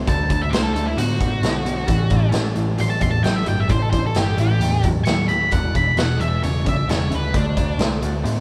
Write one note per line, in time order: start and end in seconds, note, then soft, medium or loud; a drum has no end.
0.00 1.85 F#3 medium
0.00 1.85 D4 medium
0.00 1.85 C5 medium
0.07 0.29 D2 medium
0.07 0.28 D3 medium
0.07 0.28 A3 medium
0.07 0.30 A5 medium
0.07 kick loud
0.07 closed hi-hat medium
0.29 0.52 D2 medium
0.29 0.50 D3 medium
0.29 0.50 A3 medium
0.29 0.42 A5 medium
0.29 kick medium
0.29 closed hi-hat medium
0.42 0.52 E5 medium
0.51 0.74 C2 medium
0.51 0.73 D3 medium
0.51 0.73 A3 medium
0.51 0.63 C5 medium
0.51 snare loud
0.51 closed hi-hat medium
0.63 0.73 A4 medium
0.74 0.96 D2 medium
0.74 0.96 D3 medium
0.74 0.97 A3 medium
0.74 0.86 A4 medium
0.74 closed hi-hat medium
0.86 0.97 E4 medium
0.97 1.19 A2 medium
0.97 1.19 D3 medium
0.97 1.19 B3 medium
0.97 2.30 F#4 medium
0.97 closed hi-hat medium
1.20 1.42 A2 medium
1.20 1.41 D3 medium
1.20 1.41 B3 medium
1.20 kick medium
1.20 closed hi-hat medium
1.42 1.86 B1 medium
1.42 1.64 D3 medium
1.42 1.64 B3 medium
1.42 snare loud
1.42 closed hi-hat medium
1.65 1.86 D3 medium
1.65 1.86 B3 medium
1.65 closed hi-hat medium
1.86 2.10 A1 medium
1.86 2.08 A2 medium
1.86 2.09 E3 medium
1.86 5.48 G3 medium
1.86 5.47 C#4 medium
1.86 5.47 A4 medium
1.86 kick loud
1.86 closed hi-hat medium
2.10 2.33 A1 medium
2.10 2.31 A2 medium
2.10 2.32 E3 medium
2.10 kick medium
2.10 closed hi-hat medium
2.32 2.55 A1 medium
2.32 2.54 A2 medium
2.32 2.54 E3 medium
2.32 snare loud
2.32 closed hi-hat medium
2.56 2.78 A1 medium
2.56 2.77 A2 medium
2.56 2.77 E3 medium
2.56 closed hi-hat medium
2.78 3.01 A1 medium
2.78 2.99 A2 medium
2.78 3.00 F#3 medium
2.78 2.89 C6 medium
2.78 closed hi-hat medium
2.90 3.02 A5 medium
3.00 3.23 E2 medium
3.00 3.22 A2 medium
3.00 3.22 F#3 medium
3.00 3.11 C6 medium
3.00 kick medium
3.00 closed hi-hat medium
3.11 3.23 A5 medium
3.23 3.46 A1 medium
3.23 3.45 A2 medium
3.23 3.45 F#3 medium
3.23 3.36 G5 medium
3.23 snare medium
3.23 closed hi-hat medium
3.36 3.47 E5 medium
3.46 3.68 G1 medium
3.46 3.68 A2 medium
3.46 3.68 F#3 medium
3.46 3.59 G5 medium
3.46 closed hi-hat medium
3.60 3.71 E5 medium
3.69 3.91 A1 medium
3.69 3.91 A2 medium
3.69 3.91 E3 medium
3.69 3.82 C5 medium
3.69 kick loud
3.69 closed hi-hat medium
3.82 3.90 A4 medium
3.91 4.14 A1 medium
3.91 4.13 A2 medium
3.91 4.13 E3 medium
3.91 4.03 C5 medium
3.91 kick medium
3.91 closed hi-hat medium
4.06 4.17 A4 medium
4.15 4.37 G1 medium
4.15 4.36 A2 medium
4.15 4.37 E3 medium
4.15 4.39 G4 medium
4.15 snare loud
4.15 closed hi-hat medium
4.38 4.59 A1 medium
4.38 4.60 A2 medium
4.38 4.60 E3 medium
4.38 4.83 G4 loud
4.38 closed hi-hat medium
4.60 4.82 E2 medium
4.60 4.82 A2 medium
4.60 4.82 F#3 medium
4.60 closed hi-hat medium
4.83 5.05 E2 medium
4.83 5.05 A2 medium
4.83 5.05 F#3 medium
4.83 kick medium
4.83 closed hi-hat medium
5.05 5.49 D#2 medium
5.05 5.28 A2 medium
5.05 5.28 F#3 medium
5.05 5.28 C#6 medium
5.05 snare loud
5.05 closed hi-hat medium
5.28 5.51 A2 medium
5.28 5.51 F#3 medium
5.28 5.51 B5 medium
5.28 closed hi-hat medium
5.51 5.73 E1 medium
5.51 5.73 E2 medium
5.51 5.73 B2 medium
5.51 7.32 G#3 medium
5.51 7.32 E4 medium
5.51 7.32 D5 medium
5.51 5.74 F#5 medium
5.51 kick loud
5.51 closed hi-hat medium
5.74 5.96 E1 medium
5.74 5.95 E2 medium
5.74 5.96 B2 medium
5.74 5.98 B5 medium
5.74 kick medium
5.74 closed hi-hat medium
5.96 6.18 E1 medium
5.96 6.18 E2 medium
5.96 6.18 B2 medium
5.96 6.20 F#5 medium
5.96 snare loud
5.96 closed hi-hat medium
6.20 6.41 E1 medium
6.20 6.41 E2 medium
6.20 6.41 B2 medium
6.20 6.42 E5 medium
6.20 closed hi-hat medium
6.43 6.64 E1 medium
6.43 6.63 E2 medium
6.43 6.64 C#3 medium
6.43 6.66 C#5 medium
6.43 closed hi-hat medium
6.65 6.87 B1 medium
6.65 6.86 E2 medium
6.65 6.86 C#3 medium
6.65 6.89 E5 medium
6.65 kick medium
6.65 closed hi-hat medium
6.88 7.10 E1 medium
6.88 7.09 E2 medium
6.88 7.09 C#3 loud
6.88 7.12 C#5 loud
6.88 snare medium
6.88 closed hi-hat medium
7.11 7.33 D2 medium
7.11 7.31 E2 medium
7.11 7.31 C#3 medium
7.11 closed hi-hat medium
7.15 7.35 B4 medium
7.34 7.55 D2 medium
7.34 7.54 D3 medium
7.34 7.54 A3 medium
7.34 8.40 C4 medium
7.34 7.79 D4 medium
7.34 8.40 F#4 medium
7.34 8.40 D5 medium
7.34 kick loud
7.34 closed hi-hat medium
7.57 7.78 D2 medium
7.57 7.77 D3 medium
7.57 7.77 A3 medium
7.57 kick medium
7.57 closed hi-hat medium
7.79 8.00 C2 medium
7.79 7.99 D3 medium
7.79 8.00 A3 medium
7.79 snare loud
7.79 closed hi-hat medium
8.02 8.23 D2 medium
8.02 8.22 D3 medium
8.02 8.22 A3 medium
8.02 closed hi-hat medium
8.24 8.40 A2 medium
8.24 8.40 D3 medium
8.24 8.40 B3 medium
8.24 closed hi-hat medium